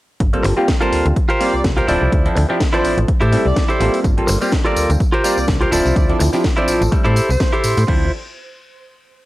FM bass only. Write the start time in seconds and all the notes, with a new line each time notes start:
0.20 G1
0.44 G1
0.92 D2
1.06 D2
1.54 C2
1.64 C2
1.88 D1
2.02 C2
2.12 D2
2.36 D2
2.84 A1
2.98 A1
3.22 A2
3.46 C2
3.80 A1
4.04 G1
4.28 G1
4.76 D2
4.90 D2
5.38 C2
5.48 C2
5.72 D1
5.85 C2
5.96 D2
6.20 D2
6.68 A1
6.81 A1
7.05 A2
7.29 C2
7.64 A2
7.78 A2
7.88 D2